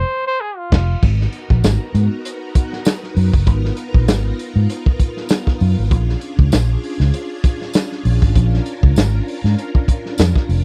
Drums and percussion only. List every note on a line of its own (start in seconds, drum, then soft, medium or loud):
0.72 kick loud
0.72 snare loud
0.72 crash medium
1.03 kick loud
1.03 crash medium
1.21 snare soft
1.33 closed hi-hat medium
1.50 kick loud
1.64 snare loud
1.64 closed hi-hat medium
1.64 tambourine medium
1.95 closed hi-hat medium
2.25 closed hi-hat medium
2.55 kick medium
2.55 closed hi-hat medium
2.73 snare soft
2.85 snare loud
2.85 closed hi-hat medium
2.85 tambourine loud
3.03 snare soft
3.17 open hi-hat medium
3.34 kick loud
3.47 kick loud
3.47 closed hi-hat medium
3.65 snare soft
3.77 closed hi-hat medium
3.94 kick loud
4.08 snare loud
4.08 closed hi-hat medium
4.08 tambourine medium
4.39 closed hi-hat medium
4.70 closed hi-hat medium
4.86 kick medium
5.00 kick medium
5.00 closed hi-hat medium
5.17 snare soft
5.29 snare loud
5.29 closed hi-hat loud
5.29 tambourine loud
5.47 kick loud
5.47 snare soft
5.60 open hi-hat medium
5.91 kick loud
5.91 closed hi-hat medium
6.09 snare soft
6.21 closed hi-hat medium
6.39 kick loud
6.52 snare loud
6.52 closed hi-hat medium
6.52 tambourine loud
6.83 open hi-hat medium
7.00 snare soft
7.14 closed hi-hat medium
7.44 kick loud
7.44 closed hi-hat medium
7.61 snare soft
7.73 snare loud
7.73 closed hi-hat medium
7.73 tambourine medium
7.92 snare soft
8.05 open hi-hat medium
8.22 kick loud
8.35 kick loud
8.35 closed hi-hat medium
8.54 snare soft
8.66 closed hi-hat medium
8.83 kick medium
8.96 snare loud
8.96 closed hi-hat medium
8.96 tambourine loud
9.28 open hi-hat medium
9.45 snare soft
9.59 closed hi-hat medium
9.75 kick medium
9.88 kick medium
9.88 closed hi-hat medium
10.06 snare soft
10.18 snare loud
10.18 closed hi-hat medium
10.18 tambourine medium
10.36 kick loud
10.36 snare soft
10.50 open hi-hat medium